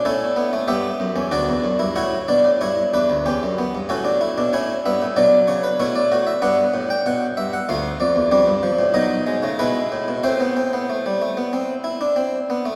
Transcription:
0.05 A2 C#4 E4 A4
0.36 B3
0.53 A3
0.68 G2 B3 G4 E5
1.00 F#2
1.16 E2 C#4
1.31 D2 D4 F#4 D5
1.49 E2
1.64 F#2
1.79 G2 E4
1.96 A2 E4 F#4 C#5
2.28 B2 D4 D5
2.44 A2
2.61 G2 E4 C#5
2.94 E2 D4 B4
3.10 D2
3.26 E2 C#4 G4
3.43 F#2
3.58 B3
3.75 G2
3.89 A2 C#4 F#4 A4
4.05 D4
4.21 E4
4.38 B2 D4
4.53 A2 C#4 E4 C#5
4.86 G2 B3 E5
5.02 A2
5.16 B2 F#3 D4 D5
5.48 C#3 C#5
5.63 B4
5.80 B2 A3 E4 C#5
5.96 D5
6.12 A2 F#4
6.27 E5
6.42 G2 B3 D4 F#5
6.74 A2
6.90 G5
7.06 B2 F#5
7.37 G2 E5
7.53 F#5
7.69 D2 A3 F4 F5
8.00 F2 D5
8.16 E2
8.31 F2 G3 D4
8.46 G2
8.63 F3
8.79 A2
8.94 B2 F#3 D#4 D#5
9.27 G#3
9.42 C#3 A3
9.59 B2 G#3 E4 B4
9.92 A2
10.08 B2
10.23 A2 A3 C4 C5
10.40 B3
10.57 C4
10.73 B3
10.90 A3
11.06 G3
11.22 A3
11.37 B3
11.53 C4
11.84 E4
12.01 D4
12.16 C4
12.50 B3
12.66 A3

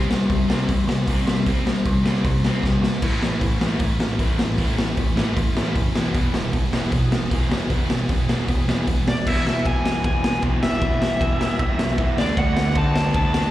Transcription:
Already playing: C3 E3 G3 C4 E4
0.09 C2 C3 G3, snare
0.28 C2 C3 G3, kick, open hi-hat
0.48 C2 C3 G3 C4, snare
0.68 C2 C3 G3, kick, open hi-hat
0.87 C2 C3 G3, snare
1.08 C2 C3 G3 C4, kick, open hi-hat
1.26 C2 C3 E3 G3 C4 E4, snare
1.46 C2 C3 G3 C4, kick, open hi-hat
1.65 C2 C3 G3, snare
1.85 C2 C3 G3, kick, open hi-hat
2.04 C2 C3 G3 C4, snare
2.24 C2 C3 G3, kick, open hi-hat
2.43 C2 C3 G3 C4, snare
2.63 C2 C3 G3, kick, snare
2.82 C2 C3 G3, snare
3.02 A1 A2 E3 A3 C#4 E4, kick, crash
3.20 A1 A2 E3, snare
3.41 A1 A2 E3, kick, open hi-hat
3.60 A1 A2 E3 A3, snare
3.79 A1 A2 E3, kick, open hi-hat
3.99 A1 A2 E3, snare
4.19 A1 A2 E3 A3, kick, open hi-hat
4.39 A1 A2 E3, snare
4.57 A1 A2 E3 A3 C#4 E4, kick, open hi-hat
4.78 A1 A2 E3, snare
4.97 A1 A2 E3, kick, open hi-hat
5.16 A1 A2 E3 A3, snare
5.36 A1 A2 E3, kick, open hi-hat
5.55 A1 A2 E3 A3, snare
5.75 F#1 A2 E3, kick, open hi-hat
5.94 E1 E2 B2 E3 G#3 B3 E4, snare
6.14 E1 E2 B2 E3, kick, open hi-hat
6.34 E1 E2 B2, snare
6.53 E1 E2 B2, kick, open hi-hat
6.72 E1 E2 B2 E3, snare
6.92 E1 E2 B2, kick, open hi-hat
7.11 E1 E2 B2, snare
7.31 E1 E2 B2 E3, kick, open hi-hat
7.49 E1 E2 B2 E3 G#3 B3 E4, snare
7.70 E1 E2 B2 E3, kick, open hi-hat
7.89 E1 E2 B2, snare
8.09 E1 E2 B2, kick, open hi-hat
8.29 E1 E2 B2 E3, snare
8.48 E1 E2 B2, kick, open hi-hat
8.68 E1 E2 B2 E3, snare
8.87 E1 E2 B2, kick, open hi-hat
9.07 E1 E2 B2 D5, snare
9.26 E1 E2 B2 E3 E5, kick, crash
9.46 E1 E5, snare
9.65 E1 G#5, kick, ride
9.84 E2 B2 E3, snare
10.04 E1 G#5, kick, ride
10.23 E2 B2 E3, snare
10.42 B1 E2 B2 E3, kick, ride
10.61 E1 E5, snare
10.81 E1 E2 B2 E3, kick, ride
11.01 E1, snare
11.21 E1, kick, ride
11.38 E1 E2 B2 E3, snare
11.59 E1, kick, ride
11.78 B1 B2 E3, snare
11.82 E2
11.97 E2 B2, kick, ride
12.02 E3
12.16 D2 D3 A3 D4 D5, snare
12.37 D2 F#5, kick, ride
12.56 D2 F#5, snare
12.75 D2 D3 A3 D4 A5, kick, ride
12.96 snare
13.13 D2 D3 A3 A5, kick, ride
13.17 D4
13.33 D3 A3 D4, snare

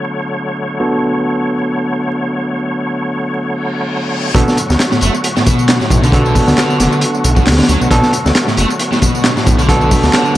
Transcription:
Already playing: D3 F#3 A3 B3 D4 F#4 A4 C#5
0.80 B3 D4 F#4 A4
3.47 reverse cymbal
4.35 B1 B2 D3 F#3 A3 B3 D4 F#4 A4, kick, closed hi-hat, tambourine
4.48 snare, tambourine
4.57 closed hi-hat, tambourine
4.70 D2, snare, tambourine
4.80 snare, clap, closed hi-hat, tambourine
4.92 A2, snare, tambourine
5.01 F#1 A3, closed hi-hat, tambourine
5.15 tambourine
5.24 closed hi-hat, tambourine
5.37 A2, snare, tambourine
5.46 B2, kick, closed hi-hat, tambourine
5.59 tambourine
5.68 snare, clap, closed hi-hat, tambourine
5.81 A2, snare, tambourine
5.90 B1, kick, closed hi-hat, tambourine
6.03 D3, closed hi-hat, tambourine
6.12 B3 D4 F#4 A4, kick, closed hi-hat, tambourine
6.25 D3, tambourine
6.35 B2, kick, open hi-hat, tambourine
6.47 D2, snare, tambourine
6.58 D3, snare, clap, closed hi-hat, tambourine
6.70 tambourine
6.80 F#1, snare, closed hi-hat, tambourine
6.92 tambourine
7.01 closed hi-hat, tambourine
7.15 tambourine
7.24 B1, closed hi-hat, tambourine
7.36 B2, kick, tambourine
7.46 D2, snare, clap, closed hi-hat, tambourine
7.52 snare, closed hi-hat
7.58 D3, snare, closed hi-hat, tambourine
7.63 snare, closed hi-hat
7.68 D2 F#3, closed hi-hat, tambourine
7.81 B1 B2, tambourine
7.91 B1 B2 B3 D4 F#4 A4, kick, closed hi-hat, tambourine
8.03 snare, tambourine
8.13 closed hi-hat, tambourine
8.25 D2, snare, tambourine
8.35 snare, clap, closed hi-hat, tambourine
8.48 A2, snare, tambourine
8.57 F#1 A3, closed hi-hat, tambourine
8.70 tambourine
8.79 closed hi-hat, tambourine
8.92 A2, snare, tambourine
9.02 B2, kick, closed hi-hat, tambourine
9.15 tambourine
9.24 snare, clap, closed hi-hat, tambourine
9.36 A2, snare, tambourine
9.46 B1, kick, closed hi-hat, tambourine
9.59 D3, closed hi-hat, tambourine
9.69 B3 D4 F#4 A4, kick, closed hi-hat, tambourine
9.81 D3, tambourine
9.91 B2, kick, open hi-hat, tambourine
10.03 D2, snare, tambourine
10.13 D3, snare, clap, closed hi-hat, tambourine
10.26 tambourine

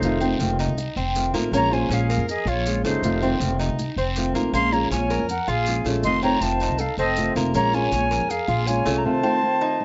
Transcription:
Already playing: A3 D#4 C5
0.02 F1 C3 D#3 A3 C4 F4, long guiro, maracas
0.21 D#3 A3 C4 F4, maracas
0.39 F1 D#3 A3 C4 F4, short guiro, maracas
0.59 D#4, short guiro, maracas
0.68 C2
0.77 muted nylon-string guitar stroke, long guiro, maracas
0.96 F1 C4, maracas
1.15 D#3 A3 C4 F4, short guiro, maracas
1.33 A1 D#3 A3 A#3 C4 F4, short guiro, maracas
1.52 A#1 F3 G#3 A#3 C#4 F4 C#5, long guiro, maracas
1.56 A#5
1.71 G#3 C#4 F4 C5 G#5, maracas
1.89 A#1 F3 G#3 C#4 F4 G#4, short guiro, maracas
1.93 F5
2.10 A#4, short guiro, maracas
2.18 F2
2.28 G#4 D#5, muted nylon-string guitar stroke, long guiro, maracas
2.45 A#1 F4 C#5, maracas
2.66 F3 G#3 C#4 F4, short guiro, maracas
2.84 F#1 G#3 A3 C#4 D#4 F4 C5, short guiro, maracas
3.02 F1 C3 D#3 A3 C4 F4, long guiro, maracas
3.22 D#3 A3 C4 F4, maracas
3.40 F1 D#3 A3 C4 F4, short guiro, maracas
3.59 D#4, short guiro, maracas
3.69 C2
3.79 muted nylon-string guitar stroke, long guiro, maracas
3.96 F1 C4, maracas
4.16 D#3 A3 C4 F4, short guiro, maracas
4.34 A1 D#3 A3 A#3 C4 F4, short guiro, maracas
4.53 A#1 F3 G#3 A#3 C#4 F4 F5 C6, long guiro, maracas
4.72 G#3 C#4 F4 C#5 A#5, maracas
4.91 A#1 F3 G#3 C#4 F4 C#5 G#5, short guiro, maracas
5.10 A#4, short guiro, maracas
5.20 F2
5.29 A#4 F#5, muted nylon-string guitar stroke, long guiro, maracas
5.48 A#1 F4 G#4 F5, maracas
5.66 F3 G#3 C#4 F4, short guiro, maracas
5.85 A#1 G#3 A3 C#4 F4, short guiro, maracas
6.03 F1 C3 D#3 A3 C4 F4 D#5 C6, long guiro, maracas
6.22 D#3 A3 C4 F4 C#5 A#5, maracas
6.41 F1 D#3 A3 C4 F4 C5 A5, short guiro, maracas
6.60 D#4, short guiro, maracas
6.69 C2
6.78 A4 F5, muted nylon-string guitar stroke, long guiro, maracas
6.97 F1 C4 A4 D#5, maracas
7.16 D#3 A3 C4 F4, short guiro, maracas
7.35 F1 D#3 A3 A#3 C4 F4, short guiro, maracas
7.54 A#1 F3 G#3 A#3 C#4 F4 C#5 A#5, long guiro, maracas
7.73 G#3 C#4 F4 C#5 G#5, maracas
7.92 A#1 F3 G#3 C#4 F4, short guiro, maracas
8.11 A#4, short guiro, maracas
8.20 F2
8.29 G#4 F5, muted nylon-string guitar stroke, long guiro, maracas
8.48 A#1 F4, maracas
8.66 F3 G#3 C#4 F4 C#5 G#5, short guiro, maracas
8.86 C2 G#3 A3 C#4 F4, short guiro, maracas
8.97 C#5 A#5
9.05 C3 D#3 A3 C4 F4 C5 A5
9.23 D#3 A3 C4 F4
9.42 D#3 A3 C4 F4
9.61 D#4
9.80 muted nylon-string guitar stroke

